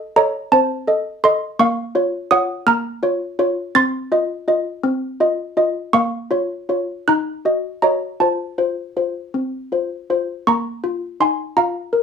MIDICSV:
0, 0, Header, 1, 2, 480
1, 0, Start_track
1, 0, Key_signature, -5, "minor"
1, 0, Tempo, 720288
1, 1064, Time_signature, 6, 3, 24, 8
1, 3953, Tempo, 756620
1, 6833, Tempo, 729927
1, 7857, End_track
2, 0, Start_track
2, 0, Title_t, "Handbells"
2, 0, Program_c, 0, 14
2, 0, Note_on_c, 0, 69, 56
2, 0, Note_on_c, 0, 75, 56
2, 0, Note_on_c, 0, 84, 97
2, 87, Note_off_c, 0, 69, 0
2, 89, Note_off_c, 0, 75, 0
2, 93, Note_off_c, 0, 84, 0
2, 108, Note_on_c, 0, 69, 55
2, 109, Note_on_c, 0, 82, 92
2, 111, Note_on_c, 0, 75, 54
2, 117, Note_on_c, 0, 73, 70
2, 324, Note_off_c, 0, 69, 0
2, 325, Note_off_c, 0, 75, 0
2, 336, Note_off_c, 0, 73, 0
2, 339, Note_off_c, 0, 82, 0
2, 346, Note_on_c, 0, 60, 65
2, 346, Note_on_c, 0, 81, 93
2, 354, Note_on_c, 0, 72, 66
2, 579, Note_off_c, 0, 60, 0
2, 583, Note_on_c, 0, 69, 53
2, 586, Note_on_c, 0, 75, 61
2, 800, Note_off_c, 0, 69, 0
2, 802, Note_off_c, 0, 72, 0
2, 802, Note_off_c, 0, 75, 0
2, 806, Note_off_c, 0, 81, 0
2, 825, Note_on_c, 0, 69, 53
2, 825, Note_on_c, 0, 84, 103
2, 833, Note_on_c, 0, 75, 73
2, 1039, Note_off_c, 0, 69, 0
2, 1051, Note_off_c, 0, 75, 0
2, 1054, Note_off_c, 0, 84, 0
2, 1062, Note_on_c, 0, 58, 79
2, 1063, Note_on_c, 0, 85, 105
2, 1070, Note_on_c, 0, 77, 81
2, 1293, Note_off_c, 0, 58, 0
2, 1300, Note_on_c, 0, 65, 58
2, 1303, Note_on_c, 0, 73, 60
2, 1515, Note_off_c, 0, 65, 0
2, 1516, Note_off_c, 0, 73, 0
2, 1516, Note_off_c, 0, 77, 0
2, 1520, Note_off_c, 0, 85, 0
2, 1538, Note_on_c, 0, 87, 99
2, 1539, Note_on_c, 0, 65, 53
2, 1541, Note_on_c, 0, 73, 60
2, 1547, Note_on_c, 0, 78, 73
2, 1754, Note_off_c, 0, 65, 0
2, 1755, Note_off_c, 0, 73, 0
2, 1765, Note_off_c, 0, 78, 0
2, 1768, Note_off_c, 0, 87, 0
2, 1777, Note_on_c, 0, 58, 67
2, 1777, Note_on_c, 0, 89, 105
2, 1785, Note_on_c, 0, 82, 83
2, 2010, Note_off_c, 0, 58, 0
2, 2017, Note_on_c, 0, 65, 58
2, 2020, Note_on_c, 0, 73, 58
2, 2234, Note_off_c, 0, 65, 0
2, 2236, Note_off_c, 0, 73, 0
2, 2259, Note_on_c, 0, 65, 60
2, 2261, Note_on_c, 0, 73, 63
2, 2473, Note_off_c, 0, 89, 0
2, 2476, Note_off_c, 0, 65, 0
2, 2477, Note_off_c, 0, 82, 0
2, 2478, Note_off_c, 0, 73, 0
2, 2499, Note_on_c, 0, 60, 77
2, 2499, Note_on_c, 0, 93, 103
2, 2507, Note_on_c, 0, 84, 80
2, 2734, Note_off_c, 0, 60, 0
2, 2743, Note_on_c, 0, 65, 57
2, 2747, Note_on_c, 0, 75, 62
2, 2960, Note_off_c, 0, 65, 0
2, 2961, Note_off_c, 0, 75, 0
2, 2984, Note_on_c, 0, 65, 53
2, 2987, Note_on_c, 0, 75, 59
2, 3201, Note_off_c, 0, 65, 0
2, 3202, Note_off_c, 0, 75, 0
2, 3222, Note_on_c, 0, 60, 67
2, 3439, Note_off_c, 0, 93, 0
2, 3443, Note_off_c, 0, 84, 0
2, 3458, Note_off_c, 0, 60, 0
2, 3467, Note_on_c, 0, 65, 53
2, 3470, Note_on_c, 0, 75, 59
2, 3685, Note_off_c, 0, 65, 0
2, 3687, Note_off_c, 0, 75, 0
2, 3711, Note_on_c, 0, 65, 58
2, 3714, Note_on_c, 0, 75, 60
2, 3930, Note_off_c, 0, 65, 0
2, 3931, Note_off_c, 0, 75, 0
2, 3954, Note_on_c, 0, 58, 73
2, 3954, Note_on_c, 0, 85, 103
2, 3961, Note_on_c, 0, 77, 73
2, 4184, Note_off_c, 0, 58, 0
2, 4191, Note_on_c, 0, 65, 54
2, 4195, Note_on_c, 0, 73, 57
2, 4410, Note_off_c, 0, 65, 0
2, 4412, Note_off_c, 0, 73, 0
2, 4434, Note_on_c, 0, 65, 50
2, 4437, Note_on_c, 0, 73, 50
2, 4652, Note_off_c, 0, 85, 0
2, 4653, Note_off_c, 0, 65, 0
2, 4655, Note_off_c, 0, 73, 0
2, 4656, Note_off_c, 0, 77, 0
2, 4679, Note_on_c, 0, 90, 90
2, 4680, Note_on_c, 0, 63, 61
2, 4687, Note_on_c, 0, 82, 69
2, 4911, Note_off_c, 0, 63, 0
2, 4917, Note_on_c, 0, 66, 42
2, 4920, Note_on_c, 0, 75, 50
2, 5131, Note_off_c, 0, 66, 0
2, 5133, Note_off_c, 0, 75, 0
2, 5134, Note_off_c, 0, 82, 0
2, 5137, Note_off_c, 0, 90, 0
2, 5152, Note_on_c, 0, 82, 74
2, 5154, Note_on_c, 0, 66, 45
2, 5156, Note_on_c, 0, 75, 48
2, 5161, Note_on_c, 0, 73, 57
2, 5371, Note_off_c, 0, 66, 0
2, 5372, Note_off_c, 0, 75, 0
2, 5382, Note_off_c, 0, 73, 0
2, 5384, Note_off_c, 0, 82, 0
2, 5393, Note_on_c, 0, 65, 57
2, 5393, Note_on_c, 0, 81, 69
2, 5401, Note_on_c, 0, 72, 54
2, 5626, Note_off_c, 0, 65, 0
2, 5628, Note_off_c, 0, 72, 0
2, 5634, Note_on_c, 0, 65, 44
2, 5635, Note_on_c, 0, 72, 48
2, 5852, Note_off_c, 0, 65, 0
2, 5853, Note_off_c, 0, 72, 0
2, 5878, Note_on_c, 0, 65, 41
2, 5879, Note_on_c, 0, 72, 43
2, 6092, Note_off_c, 0, 81, 0
2, 6094, Note_off_c, 0, 65, 0
2, 6095, Note_off_c, 0, 72, 0
2, 6116, Note_on_c, 0, 60, 50
2, 6350, Note_off_c, 0, 60, 0
2, 6356, Note_on_c, 0, 65, 39
2, 6360, Note_on_c, 0, 72, 42
2, 6574, Note_off_c, 0, 65, 0
2, 6575, Note_off_c, 0, 72, 0
2, 6597, Note_on_c, 0, 65, 41
2, 6599, Note_on_c, 0, 72, 49
2, 6810, Note_off_c, 0, 65, 0
2, 6811, Note_off_c, 0, 72, 0
2, 6833, Note_on_c, 0, 58, 69
2, 6833, Note_on_c, 0, 85, 88
2, 6841, Note_on_c, 0, 82, 70
2, 7073, Note_on_c, 0, 65, 53
2, 7294, Note_off_c, 0, 82, 0
2, 7297, Note_off_c, 0, 85, 0
2, 7314, Note_on_c, 0, 63, 45
2, 7316, Note_on_c, 0, 84, 82
2, 7323, Note_on_c, 0, 80, 64
2, 7460, Note_off_c, 0, 65, 0
2, 7543, Note_off_c, 0, 80, 0
2, 7547, Note_off_c, 0, 84, 0
2, 7553, Note_on_c, 0, 65, 51
2, 7553, Note_on_c, 0, 82, 85
2, 7556, Note_off_c, 0, 63, 0
2, 7561, Note_on_c, 0, 77, 64
2, 7790, Note_on_c, 0, 70, 53
2, 7857, Note_off_c, 0, 58, 0
2, 7857, Note_off_c, 0, 65, 0
2, 7857, Note_off_c, 0, 70, 0
2, 7857, Note_off_c, 0, 77, 0
2, 7857, Note_off_c, 0, 82, 0
2, 7857, End_track
0, 0, End_of_file